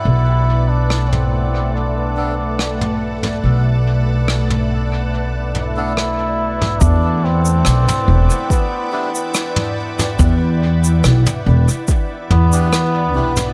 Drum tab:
SH |----------------|----------------|x--xxx-xx--xx--x|x--xxx-xx--xx--x|
SD |----r-------r---|----r-------r---|----r-------r---|----r-------r---|
T2 |-----o-------o-o|-----o----o----o|-----o-------o-o|-----o----o----o|
BD |----------------|----------------|o-------o-------|o-------o-------|